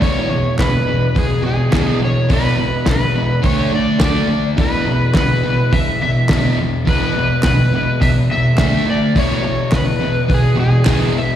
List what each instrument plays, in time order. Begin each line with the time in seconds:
0.01 distorted electric guitar E2 B2 E3, electric slide guitar C#5, kick, open hi-hat
0.30 distorted electric guitar E2 B2
0.59 distorted electric guitar E2 B2, electric slide guitar B4, kick, snare, clap, open hi-hat
0.87 distorted electric guitar E2 B2
1.15 distorted electric guitar E2 B2, electric slide guitar G#4, kick, open hi-hat
1.42 distorted electric guitar E2 B2, electric slide guitar G#4
1.71 distorted electric guitar E2 B2 E3, kick, snare, clap, open hi-hat
2.00 distorted electric guitar E2 B2
2.05 electric slide guitar C#5
2.29 distorted electric guitar E2 B2 E3, kick, open hi-hat
2.33 electric slide guitar B4
2.57 distorted electric guitar E2 B2
2.85 distorted electric guitar E2 B2, kick, snare, clap, open hi-hat
2.91 electric slide guitar B4
3.15 distorted electric guitar E2 B2
3.42 distorted electric guitar D3 A3 D4, electric slide guitar C#5, kick, open hi-hat
3.73 distorted electric guitar D3 A3, electric slide guitar D5
3.99 distorted electric guitar D3 A3 D4, kick, snare, clap, open hi-hat
4.03 electric slide guitar D5
4.27 distorted electric guitar D3 A3
4.57 distorted electric guitar E2 B2 E3, electric slide guitar B4, kick, open hi-hat
4.85 distorted electric guitar E2 B2
5.14 distorted electric guitar E2 B2, electric slide guitar B4, kick, snare, clap, open hi-hat
5.43 distorted electric guitar E2 B2
5.72 distorted electric guitar E2 B2, electric slide guitar E5, kick, open hi-hat
6.01 distorted electric guitar E2 B2, electric slide guitar E5
6.29 distorted electric guitar E2 B2 E3, kick, snare, clap, open hi-hat
6.57 distorted electric guitar E2 B2
6.85 distorted electric guitar E2 B2 E3, electric slide guitar B4, kick, open hi-hat
7.15 distorted electric guitar E2 B2
7.43 distorted electric guitar E2 B2, electric slide guitar B4, kick, snare, clap, open hi-hat
7.73 distorted electric guitar E2 B2
8.01 distorted electric guitar E2 B2, electric slide guitar E5, kick, open hi-hat
8.31 distorted electric guitar E2 B2, electric slide guitar E5
8.58 distorted electric guitar D3 A3 D4, kick, snare, clap, open hi-hat
8.87 distorted electric guitar D3 A3, electric slide guitar D5
9.15 distorted electric guitar E2 B2 E3, electric slide guitar C#5, kick, open hi-hat
9.43 distorted electric guitar E2 B2
9.72 distorted electric guitar E2 B2, kick, snare, clap, open hi-hat
9.76 electric slide guitar B4
10.00 distorted electric guitar E2 B2
10.28 distorted electric guitar E2 B2, kick, open hi-hat
10.34 electric slide guitar G#4
10.56 distorted electric guitar E2 B2
10.60 electric slide guitar G#4
10.84 distorted electric guitar E2 B2 E3, kick, snare, clap, open hi-hat
11.14 distorted electric guitar E2 B2
11.18 electric slide guitar E5